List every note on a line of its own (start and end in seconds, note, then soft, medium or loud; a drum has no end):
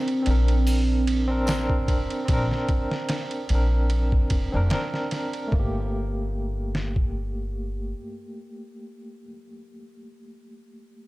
0.00 0.19 C4 medium
0.00 5.55 C4 medium
0.00 0.21 D4 medium
0.00 0.23 A#4 loud
0.08 ride soft
0.23 1.23 C4 medium
0.23 1.25 D4 medium
0.23 ride medium
0.27 1.88 A#1 medium
0.27 1.27 A#4 medium
0.48 ride soft
0.67 open hi-hat medium
0.67 triangle medium
1.07 ride medium
1.28 1.42 C4 medium
1.28 1.43 D4 medium
1.28 1.44 A#4 medium
1.46 2.23 C4 medium
1.46 2.24 D4 medium
1.46 snare loud
1.46 ride medium
1.46 tambourine medium
1.50 2.25 A#4 medium
1.70 kick medium
1.88 2.07 F1 medium
1.88 kick medium
1.88 ride medium
2.10 ride soft
2.25 2.48 A#1 medium
2.25 3.44 C4 medium
2.25 3.46 D4 medium
2.25 kick loud
2.25 ride medium
2.34 3.48 A#4 loud
2.51 snare soft
2.69 kick medium
2.69 ride medium
2.91 snare medium
3.09 snare loud
3.09 ride medium
3.31 ride soft
3.47 4.31 A#1 medium
3.47 4.47 C4 medium
3.47 ride medium
3.51 4.49 D4 medium
3.55 4.51 A#4 medium
3.90 ride medium
4.12 kick medium
4.30 4.50 F1 medium
4.30 kick medium
4.30 ride medium
4.52 4.70 F1 medium
4.52 4.67 C4 medium
4.52 4.68 D4 medium
4.56 4.69 A#4 medium
4.70 5.48 C4 medium
4.70 5.49 D4 medium
4.70 5.49 A#4 medium
4.70 snare loud
4.70 ride medium
4.94 snare soft
5.11 snare soft
5.11 ride medium
5.33 ride soft
5.48 9.21 A3 medium
5.52 7.92 G1 medium
5.52 9.27 A#3 medium
5.52 kick loud
5.59 9.33 G4 medium
6.75 snare medium
6.96 kick medium